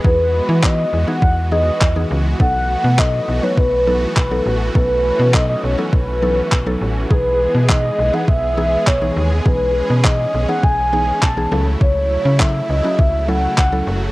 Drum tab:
CP |--x---x-|--x---x-|--x---x-|--x---x-|
BD |o-o-o-o-|o-o-o-o-|o-o-o-o-|o-o-o-o-|

CP |--x---x-|--x---x-|
BD |o-o-o-o-|o-o-o-o-|